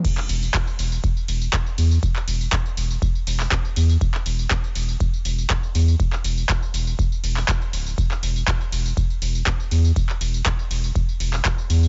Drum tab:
CC |x---------------|----------------|----------------|----------------|
RD |x-x-x-x-x-x-x-x-|x-x-x-x-x-x-x-x-|x-x-x-x-x-x-x-x-|x-x-x-x-x-x-x-x-|
HH |--o---o---o---o-|--o---o---o---o-|--o---o---o---o-|--o---o---o---o-|
TB |xxxxxxxxxxxxxxxx|xxxxxxxxxxxxxxxx|xxxxxxxxxxxxxxxx|xxxxxxxxxxxxxxxx|
CP |-x--x-------x---|-x--x------xx---|-x--x-------x---|-x--x------xx---|
BD |o---o---o---o---|o---o---o---o---|o---o---o---o---|o---o---o---o---|

CC |----------------|----------------|
RD |x-x-x-x-x-x-x-x-|x-x-x-x-x-x-x-x-|
HH |--o---o---o---o-|--o---o---o---o-|
TB |xxxxxxxxxxxxxxxx|xxxxxxxxxxxxxxxx|
CP |-x--x-------x---|-x--x------xx---|
BD |o---o---o---o---|o---o---o---o---|